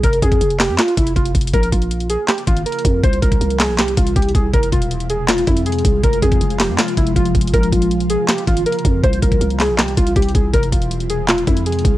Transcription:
0.03 808-style bass F1, synth keys A#4, kick, closed hi-hat
0.13 closed hi-hat
0.22 808-style bass F2, synth keys G#4, kick, closed hi-hat
0.32 kick, closed hi-hat
0.41 808-style bass F1, closed hi-hat
0.50 closed hi-hat
0.60 synth keys G4, snare, clap, open hi-hat
0.69 808-style bass F2
0.79 synth keys F4, snare, clap, closed hi-hat
0.88 closed hi-hat
0.97 808-style bass F1, synth keys E4, kick, closed hi-hat
1.07 closed hi-hat
1.16 808-style bass F1, synth keys F4, kick, closed hi-hat
1.26 closed hi-hat
1.35 808-style bass F1, kick, closed hi-hat
1.41 closed hi-hat
1.47 closed hi-hat
1.53 808-style bass A#1, ambient pad C#3 F3 A#3 F4, synth keys A#4, kick, closed hi-hat
1.63 closed hi-hat
1.72 808-style bass A#1, synth keys F4, kick, closed hi-hat
1.82 closed hi-hat
1.91 closed hi-hat
2.00 closed hi-hat
2.10 synth keys G#4, closed hi-hat
2.28 synth keys G4, snare, clap, closed hi-hat
2.38 closed hi-hat
2.47 808-style bass G#1, synth keys F4, kick, closed hi-hat
2.57 closed hi-hat
2.66 synth keys A#4, closed hi-hat
2.72 closed hi-hat
2.79 closed hi-hat
2.85 808-style bass F2, kick, closed hi-hat
3.03 808-style bass C2, ambient pad C3 E3 G3 E4, synth keys C5, kick, closed hi-hat
3.13 closed hi-hat
3.22 808-style bass C2, synth keys A#4, kick, closed hi-hat
3.32 kick, closed hi-hat
3.41 808-style bass C2, closed hi-hat
3.50 closed hi-hat
3.60 synth keys G#4, snare, clap, open hi-hat
3.69 808-style bass A#1
3.78 synth keys G4, snare, clap, closed hi-hat
3.83 808-style bass C2
3.88 closed hi-hat
3.97 808-style bass C2, synth keys F4, kick, closed hi-hat
4.07 closed hi-hat
4.16 808-style bass C2, synth keys G4, kick, closed hi-hat
4.22 closed hi-hat
4.29 closed hi-hat
4.35 808-style bass C2, synth keys G#4, kick, closed hi-hat
4.53 808-style bass F1, ambient pad F3 G#3 F4, synth keys A#4, kick, closed hi-hat
4.63 closed hi-hat
4.72 808-style bass E1, synth keys F4, kick, closed hi-hat
4.82 closed hi-hat
4.91 closed hi-hat
5.00 closed hi-hat
5.10 synth keys G#4, closed hi-hat
5.28 synth keys F4, snare, clap, closed hi-hat
5.38 closed hi-hat
5.47 808-style bass F2, synth keys E4, kick, closed hi-hat
5.57 closed hi-hat
5.66 synth keys G#4, closed hi-hat
5.72 closed hi-hat
5.79 closed hi-hat
5.85 808-style bass C2, kick, closed hi-hat
6.04 808-style bass F1, synth keys A#4, kick, closed hi-hat
6.13 closed hi-hat
6.22 808-style bass F2, synth keys G#4, kick, closed hi-hat
6.32 kick, closed hi-hat
6.41 808-style bass F1, closed hi-hat
6.50 closed hi-hat
6.60 synth keys G4, snare, clap, open hi-hat
6.69 808-style bass F2
6.78 synth keys F4, snare, clap, closed hi-hat
6.88 closed hi-hat
6.97 808-style bass F1, synth keys E4, kick, closed hi-hat
7.07 closed hi-hat
7.16 808-style bass F1, synth keys F4, kick, closed hi-hat
7.25 closed hi-hat
7.35 808-style bass F1, kick, closed hi-hat
7.41 closed hi-hat
7.47 closed hi-hat
7.53 808-style bass A#1, ambient pad C#3 A#3 F4, synth keys A#4, kick, closed hi-hat
7.63 closed hi-hat
7.72 808-style bass A#1, synth keys F4, kick, closed hi-hat
7.82 closed hi-hat
7.91 closed hi-hat
8.00 closed hi-hat
8.10 synth keys G#4, closed hi-hat
8.29 synth keys G4, snare, clap, closed hi-hat
8.38 closed hi-hat
8.47 808-style bass G#1, synth keys F4, kick, closed hi-hat
8.57 closed hi-hat
8.66 synth keys A#4, closed hi-hat
8.72 closed hi-hat
8.79 closed hi-hat
8.85 808-style bass F2, kick, closed hi-hat
9.03 808-style bass C2, ambient pad C3 E3 G3 E4, synth keys C5, kick, closed hi-hat
9.13 closed hi-hat
9.22 808-style bass C2, synth keys A#4, kick, closed hi-hat
9.32 kick, closed hi-hat
9.41 808-style bass C2, closed hi-hat
9.50 closed hi-hat
9.60 synth keys G#4, snare, clap, open hi-hat
9.69 808-style bass A#1
9.79 synth keys G4, snare, clap, closed hi-hat
9.83 808-style bass C2
9.88 closed hi-hat
9.97 808-style bass C2, synth keys F4, kick, closed hi-hat
10.07 closed hi-hat
10.16 808-style bass C2, synth keys G4, kick, closed hi-hat
10.22 closed hi-hat
10.29 closed hi-hat
10.35 808-style bass C2, synth keys G#4, kick, closed hi-hat
10.53 808-style bass F1, ambient pad F3 G#3 F4, synth keys A#4, kick, closed hi-hat
10.63 closed hi-hat
10.72 808-style bass E1, synth keys F4, kick, closed hi-hat
10.82 closed hi-hat
10.91 closed hi-hat
11.00 closed hi-hat
11.10 synth keys G#4, closed hi-hat
11.28 synth keys F4, snare, clap, closed hi-hat
11.38 closed hi-hat
11.47 808-style bass F2, synth keys E4, kick, closed hi-hat
11.57 closed hi-hat
11.66 synth keys G#4, closed hi-hat
11.72 closed hi-hat
11.79 closed hi-hat
11.85 808-style bass C2, kick, closed hi-hat

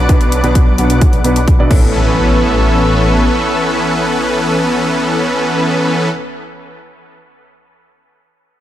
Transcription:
Already playing: analog synth pad B4 D5 F#5 D6
0.09 detuned saw bass B1, felt piano B2 B3 D4 F#4 B4, supersaw synth F#3 B3 D4 B4 D5, kick, closed hi-hat
0.21 closed hi-hat
0.32 closed hi-hat
0.43 detuned saw bass B1, felt piano B2 B3 D4 F#4 B4, supersaw synth F#3 B3 D4 B4 D5, closed hi-hat
0.55 kick, closed hi-hat
0.78 detuned saw bass B1, felt piano B2 B3 D4 F#4 B4, supersaw synth F#3 B3 D4 B4 F#5, closed hi-hat
0.90 closed hi-hat
1.01 kick, closed hi-hat
1.13 closed hi-hat
1.24 detuned saw bass B1, felt piano B2 B3 D4 F#4 B4, supersaw synth F#3 B3 D4 B4 F#5, closed hi-hat
1.36 closed hi-hat
1.48 kick, closed hi-hat
1.59 detuned saw bass B1, felt piano B2 B3 D4 F#4 D5, supersaw synth F#3 B3 D4 B4 E5
1.69 detuned saw bass A1, supersaw synth E3 B3 C#4 A4 B4, felt piano B3 C#4 E4 A4, analog synth pad B3 A4 C#5 E5, kick, crash, impact

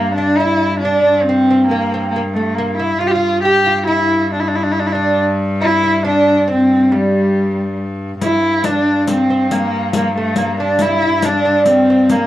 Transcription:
Already playing: viola da gamba G2, cello A#3, lute A#3
0.15 cello D4, lute D4
0.37 cello E4, lute E4
0.80 cello D4
0.85 lute D4
1.23 cello C4
1.29 lute C4
1.50 lute C4
1.67 cello A#3
1.71 lute A#3
1.94 lute C4
2.11 cello A#3
2.16 lute A#3
2.34 cello A3, lute A3
2.55 cello A#3, lute A#3
2.77 cello E4, lute E4
2.99 viola da gamba G2, cello F4, lute F4
3.07 cello F4 G4
3.16 lute F4
3.43 cello G4, lute G4
3.66 lute F4
3.87 cello E4, lute E4
4.33 cello D4
4.40 cello E4
4.48 cello D4
4.55 cello E4
4.63 cello D4
4.72 cello E4
4.79 cello D4
4.87 cello E4
4.93 cello D4, lute D4
5.62 cello E4, lute E4
5.84 lute E4
6.05 lute D4, cello D4
6.48 lute C4, cello C4
6.92 lute G3, cello G3
8.19 viola da gamba G2, cello E4, lute E4, riq
8.64 cello D4, lute D4, riq
9.07 cello C4, lute C4, riq
9.30 lute C4
9.51 lute A#3, cello A#3, riq
9.93 cello A#3, lute A#3, riq
10.16 cello A3, lute A3
10.36 cello A#3, lute A#3, riq
10.60 cello D4, lute D4
10.79 cello E4, lute E4, riq
11.02 lute E4
11.22 lute D4, cello D4, riq
11.45 lute D4
11.66 lute C4, cello C4, riq
11.90 lute C4
12.10 cello A#3, lute A#3, riq

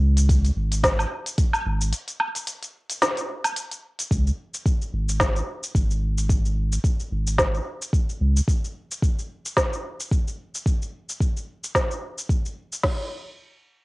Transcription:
Already playing: sub bass C#2
0.17 closed hi-hat, shaker
0.29 kick, closed hi-hat, shaker
0.45 closed hi-hat, shaker
0.56 sub bass G#1
0.72 closed hi-hat, shaker
0.84 kick, snare, closed hi-hat, shaker
0.99 low woodblock, shaker
1.26 closed hi-hat, shaker
1.38 kick, closed hi-hat, shaker
1.53 low woodblock, shaker
1.66 sub bass G#1
1.81 shaker
1.93 closed hi-hat, shaker
2.08 closed hi-hat, shaker
2.20 low woodblock
2.35 closed hi-hat, shaker
2.47 closed hi-hat, shaker
2.63 closed hi-hat, shaker
2.90 closed hi-hat, shaker
3.02 snare, closed hi-hat, shaker
3.17 closed hi-hat, shaker
3.44 closed hi-hat, low woodblock, shaker
3.56 closed hi-hat, shaker
3.71 closed hi-hat, shaker
3.99 closed hi-hat, shaker
4.11 sub bass C#2, kick, shaker
4.27 shaker
4.54 shaker
4.66 kick, shaker
4.82 shaker
4.93 sub bass G#1
5.09 shaker
5.20 kick, snare, shaker
5.36 shaker
5.63 shaker
5.75 sub bass G#1, kick, shaker
5.91 shaker
6.18 shaker
6.29 kick, shaker
6.45 shaker
6.72 shaker
6.84 kick, shaker
7.00 shaker
7.11 sub bass G#1
7.27 shaker
7.38 kick, snare, shaker
7.55 shaker
7.82 shaker
7.93 kick, shaker
8.09 shaker
8.21 sub bass C#2
8.37 shaker
8.48 kick, shaker
8.64 shaker
8.91 shaker
9.02 kick, shaker
9.19 shaker
9.46 shaker
9.57 kick, snare, shaker
9.73 shaker
10.00 shaker
10.11 kick, shaker
10.28 shaker
10.55 shaker
10.66 kick, shaker
10.82 shaker
11.09 shaker
11.20 kick, shaker
11.37 shaker
11.64 shaker
11.75 kick, snare, shaker
11.91 shaker
12.18 shaker
12.29 kick, shaker
12.45 shaker
12.73 shaker
12.83 kick, snare, crash

